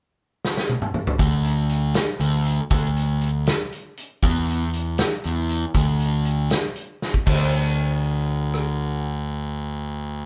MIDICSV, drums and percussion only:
0, 0, Header, 1, 2, 480
1, 0, Start_track
1, 0, Tempo, 505902
1, 1133, Time_signature, 6, 3, 24, 8
1, 9731, End_track
2, 0, Start_track
2, 0, Title_t, "Drums"
2, 423, Note_on_c, 9, 38, 63
2, 518, Note_off_c, 9, 38, 0
2, 545, Note_on_c, 9, 38, 65
2, 640, Note_off_c, 9, 38, 0
2, 659, Note_on_c, 9, 48, 69
2, 754, Note_off_c, 9, 48, 0
2, 776, Note_on_c, 9, 47, 70
2, 871, Note_off_c, 9, 47, 0
2, 895, Note_on_c, 9, 47, 79
2, 990, Note_off_c, 9, 47, 0
2, 1017, Note_on_c, 9, 43, 84
2, 1112, Note_off_c, 9, 43, 0
2, 1133, Note_on_c, 9, 36, 93
2, 1134, Note_on_c, 9, 42, 71
2, 1228, Note_off_c, 9, 36, 0
2, 1229, Note_off_c, 9, 42, 0
2, 1375, Note_on_c, 9, 42, 54
2, 1470, Note_off_c, 9, 42, 0
2, 1609, Note_on_c, 9, 42, 57
2, 1704, Note_off_c, 9, 42, 0
2, 1845, Note_on_c, 9, 42, 81
2, 1853, Note_on_c, 9, 38, 101
2, 1940, Note_off_c, 9, 42, 0
2, 1948, Note_off_c, 9, 38, 0
2, 2090, Note_on_c, 9, 42, 54
2, 2185, Note_off_c, 9, 42, 0
2, 2329, Note_on_c, 9, 42, 55
2, 2424, Note_off_c, 9, 42, 0
2, 2566, Note_on_c, 9, 42, 69
2, 2570, Note_on_c, 9, 36, 93
2, 2661, Note_off_c, 9, 42, 0
2, 2665, Note_off_c, 9, 36, 0
2, 2816, Note_on_c, 9, 42, 56
2, 2911, Note_off_c, 9, 42, 0
2, 3050, Note_on_c, 9, 42, 57
2, 3145, Note_off_c, 9, 42, 0
2, 3290, Note_on_c, 9, 42, 76
2, 3298, Note_on_c, 9, 38, 98
2, 3384, Note_off_c, 9, 42, 0
2, 3393, Note_off_c, 9, 38, 0
2, 3533, Note_on_c, 9, 42, 52
2, 3627, Note_off_c, 9, 42, 0
2, 3771, Note_on_c, 9, 42, 54
2, 3866, Note_off_c, 9, 42, 0
2, 4007, Note_on_c, 9, 42, 67
2, 4010, Note_on_c, 9, 36, 93
2, 4102, Note_off_c, 9, 42, 0
2, 4105, Note_off_c, 9, 36, 0
2, 4253, Note_on_c, 9, 42, 49
2, 4348, Note_off_c, 9, 42, 0
2, 4492, Note_on_c, 9, 42, 54
2, 4587, Note_off_c, 9, 42, 0
2, 4725, Note_on_c, 9, 42, 75
2, 4734, Note_on_c, 9, 38, 101
2, 4820, Note_off_c, 9, 42, 0
2, 4829, Note_off_c, 9, 38, 0
2, 4969, Note_on_c, 9, 42, 53
2, 5064, Note_off_c, 9, 42, 0
2, 5210, Note_on_c, 9, 42, 50
2, 5305, Note_off_c, 9, 42, 0
2, 5449, Note_on_c, 9, 42, 74
2, 5452, Note_on_c, 9, 36, 86
2, 5544, Note_off_c, 9, 42, 0
2, 5547, Note_off_c, 9, 36, 0
2, 5690, Note_on_c, 9, 42, 54
2, 5785, Note_off_c, 9, 42, 0
2, 5931, Note_on_c, 9, 42, 58
2, 6026, Note_off_c, 9, 42, 0
2, 6170, Note_on_c, 9, 42, 74
2, 6179, Note_on_c, 9, 38, 95
2, 6265, Note_off_c, 9, 42, 0
2, 6274, Note_off_c, 9, 38, 0
2, 6411, Note_on_c, 9, 42, 54
2, 6506, Note_off_c, 9, 42, 0
2, 6664, Note_on_c, 9, 38, 50
2, 6759, Note_off_c, 9, 38, 0
2, 6776, Note_on_c, 9, 36, 74
2, 6870, Note_off_c, 9, 36, 0
2, 6892, Note_on_c, 9, 49, 73
2, 6897, Note_on_c, 9, 36, 92
2, 6987, Note_off_c, 9, 49, 0
2, 6992, Note_off_c, 9, 36, 0
2, 8101, Note_on_c, 9, 37, 50
2, 8196, Note_off_c, 9, 37, 0
2, 9731, End_track
0, 0, End_of_file